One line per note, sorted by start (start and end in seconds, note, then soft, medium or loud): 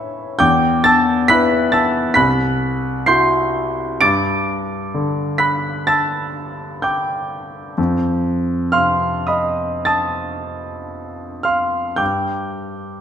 0.00 0.37 A2 medium
0.00 0.40 E3 soft
0.00 0.43 C#5 medium
0.00 0.43 E5 medium
0.00 0.40 G5 medium
0.00 0.43 B5 medium
0.00 0.44 C#6 medium
0.00 0.44 E6 medium
0.39 2.13 E2 medium
0.39 0.82 G5 medium
0.39 0.82 D6 medium
0.39 0.85 G6 medium
0.84 1.27 A5 medium
0.84 1.27 E6 medium
0.84 1.30 A6 medium
1.28 2.13 E4 soft
1.28 2.13 B4 soft
1.28 1.71 B5 medium
1.28 1.71 F#6 medium
1.28 1.73 B6 loud
1.72 2.14 A5 medium
1.72 2.14 E6 medium
1.72 2.16 A6 medium
2.14 3.98 C2 medium
2.14 3.03 B5 medium
2.14 3.03 F#6 medium
2.14 3.07 B6 medium
3.06 3.98 E4 soft
3.06 3.99 F#4 soft
3.06 3.98 C6 medium
3.06 3.98 G6 medium
3.06 4.01 C7 medium
4.01 7.74 G2 medium
4.01 5.37 D6 medium
4.01 5.37 A6 medium
4.01 5.41 D7 loud
4.94 7.77 D3 soft
5.38 5.85 B5 medium
5.38 5.84 F#6 medium
5.38 5.87 B6 medium
5.87 6.79 A5 medium
5.87 6.80 E6 medium
5.87 6.83 A6 medium
6.82 7.73 G5 medium
6.82 7.74 D6 soft
6.82 7.77 G6 medium
7.78 11.96 F2 medium
8.72 12.00 C3 soft
8.72 9.25 F5 medium
8.72 9.25 C6 medium
8.72 9.28 F6 medium
9.27 9.84 D#5 soft
9.27 9.83 B5 soft
9.27 9.85 D#6 medium
9.85 11.41 A5 medium
9.85 11.41 D#6 medium
9.85 11.45 A6 medium
11.43 11.95 F5 soft
11.43 11.95 C6 soft
11.43 11.99 F6 medium
11.96 13.01 G2 soft
11.96 13.01 G5 soft
11.96 13.01 D6 soft
11.96 13.01 G6 medium